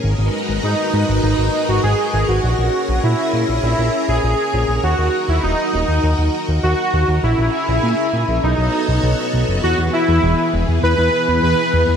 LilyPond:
<<
  \new Staff \with { instrumentName = "String machine" } { \time 4/4 \key e \lydian \tempo 4 = 100 << { <ais' b'>1~ | <ais' b'>1~ | <ais' b'>1~ | <ais' b'>2 dis''2 |
gis'1 | } \\ { <gis dis' fis'>1 | <cis' gis'>1 | <dis' fis'>1 | <cis' gis'>2 <b fis' a' cis''>2 |
<e b>1 | } >> }
  \new Staff \with { instrumentName = "Supersaw synth" } { \time 4/4 \key e \lydian r4 dis'4 dis'8. fis'16 gis'8 gis'16 fis'16~ | fis'4 e'4 e'8. gis'16 gis'4 | fis'8. e'16 dis'8 dis'4 r8 fis'4 | e'2 dis'4. r8 |
fis'8 e'4 r8 b'4 b'8. r16 | }
  \new Staff \with { instrumentName = "Analog synth bass" } { \clef bass \time 4/4 \key e \lydian gis,,16 gis,,16 r16 gis,,16 gis,16 r16 gis,16 gis,,16 gis,,16 gis,,16 r16 gis,,16 gis,,16 r16 gis,,16 gis,,16 | ais,,16 ais,,16 r16 ais,,16 ais,16 r16 ais,16 ais,,16 ais,,16 ais,,16 r16 ais,,16 ais,,16 r16 ais,,16 ais,,16 | dis,16 dis,16 r16 dis,16 dis,,16 r16 dis,,16 dis,16 dis,16 dis,16 r16 dis,16 dis,16 r16 dis,16 dis,16 | ais,,16 ais,,16 r16 ais,,16 ais,16 r16 ais,16 ais,,16 b,,16 b,,16 r16 b,,16 b,,16 r16 b,,16 fis,,16 |
e,16 e,16 r16 e,16 e,,16 r16 e,,16 e,16 e,16 e,16 r16 e,16 e,16 r16 e,16 e,16 | }
>>